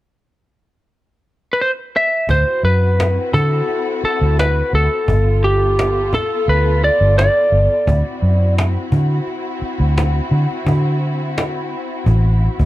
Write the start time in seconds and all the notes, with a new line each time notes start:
1.53 B4
1.61 C5
1.96 E5
2.29 D2 C4 E4 F#4 C5, cajon bass
2.63 F#2 B4, cajon slap
3.00 cajon slap
3.34 D3 A4, cajon bass
3.69 cajon slap
4.03 A4, muted fingered electric bass stroke, cajon slap
4.21 D2
4.39 B4, cajon slap
4.73 D2 A4
5.07 G1 B3 F4 A4, cajon bass
5.43 G4, cajon slap
5.63 cajon slap
5.79 cajon slap
6.13 A4, cajon bass
6.48 D2 B4, cajon slap
6.83 D5, cajon slap
7.01 G1
7.18 D5, cajon slap
7.52 G1
7.72 cajon slap
7.87 D2 C4 E4 F#4, cajon bass
8.22 F#2, cajon slap
8.58 cajon slap
8.77 cajon slap
8.92 D3, cajon bass
9.27 cajon slap
9.62 muted fingered electric bass stroke, cajon slap
9.80 D2
9.98 cajon slap
10.31 D3
10.51 cajon slap
10.67 D3, cajon bass
11.02 cajon slap
11.38 cajon slap
12.06 A1, cajon bass, cajon slap
12.41 cajon slap
12.59 D2, cajon bass